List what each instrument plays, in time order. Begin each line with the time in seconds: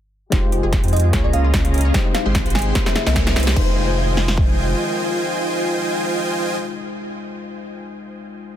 0.30 sub bass F1, string section D#3 G#3 G4, tine electric piano G#3 D#4 F4 G4 C5, synth arpeggio sound D#4, supersaw synth F4 C5 D#5 G5 G#5, kick, snare, closed hi-hat, riser
0.43 synth arpeggio sound F4
0.52 synth arpeggio sound G4, closed hi-hat
0.63 sub bass F1, supersaw synth F4 C5 D#5 G5 G#5, synth arpeggio sound G#4
0.73 synth arpeggio sound C5, kick, snare, closed hi-hat
0.84 sub bass F2, synth arpeggio sound D#4, supersaw synth F4 C5 D#5 G5 G#5, closed hi-hat
0.88 closed hi-hat
0.93 synth arpeggio sound D#4, fm electric piano D#5, closed hi-hat
0.96 closed hi-hat
1.00 closed hi-hat
1.04 synth arpeggio sound F4
1.11 sub bass C#2, string section C#3 A#3 F4, tine electric piano A#3 C#4 F4 G#4, supersaw synth C#4 G#4 D#5 F5 A#5, synth arpeggio sound A#4, kick, snare, closed hi-hat
1.15 tine electric piano C#5
1.24 sub bass C#2, supersaw synth C#4 G#4 D#5 F5 A#5, synth arpeggio sound C#5, fm electric piano D#5
1.33 sub bass C#2, supersaw synth C#4 G#4 D#5 F5 A#5, fm electric piano F5, synth arpeggio sound F5, closed hi-hat
1.44 synth arpeggio sound F4, fm electric piano F5
1.54 sub bass C#2, supersaw synth C#4 G#4 D#5 F5 A#5, synth arpeggio sound F4, kick, snare, closed hi-hat
1.65 synth arpeggio sound G#4, closed hi-hat
1.74 synth arpeggio sound A#4, closed hi-hat
1.78 closed hi-hat
1.81 closed hi-hat
1.85 synth arpeggio sound C#5
1.92 string section C3 G#3 G4, tine electric piano G#3 C4 D#4 G4 C5, synth arpeggio sound D#5, kick, snare, closed hi-hat
2.05 synth arpeggio sound D#4
2.14 synth arpeggio sound D#4, fm electric piano F5, snare, closed hi-hat
2.25 sub bass G#1, supersaw synth G#3 G#4 C5 G5 C6, synth arpeggio sound G4
2.35 synth arpeggio sound G#4, kick, snare, closed hi-hat
2.46 sub bass G#1, supersaw synth G#3 G#4 C5 G5 C6, synth arpeggio sound C5, closed hi-hat
2.50 closed hi-hat
2.55 synth arpeggio sound D#5, fm electric piano G#5, snare, closed hi-hat
2.59 closed hi-hat
2.62 closed hi-hat
2.66 synth arpeggio sound D#4
2.73 string section C#3 G#3 A#3 E4, tine electric piano A#3 C#4 E4 G#4, synth arpeggio sound E4, kick, snare, closed hi-hat
2.77 tine electric piano C5
2.86 synth arpeggio sound G4, fm electric piano E5, snare
2.96 synth arpeggio sound G#4, fm electric piano E5, snare, closed hi-hat
3.06 sub bass C2, supersaw synth C4 G4 C#5 E5 G#5 A#5, synth arpeggio sound A#4, fm electric piano E5, snare
3.16 synth arpeggio sound C5, kick, snare, closed hi-hat
3.27 synth arpeggio sound E4, snare, closed hi-hat
3.36 sub bass C2, supersaw synth C4 G4 C#5 E5 G#5 A#5, synth arpeggio sound E4, snare, closed hi-hat
3.40 closed hi-hat
3.43 closed hi-hat
3.47 synth arpeggio sound G4, snare
3.53 sub bass F1, string section D#3 G#3, tine electric piano G#3 D#4 F4, synth arpeggio sound D#4, supersaw synth F4 C5 D#5 G5 G#5, kick, crash
3.59 tine electric piano C5
4.17 snare
4.28 snare
4.38 kick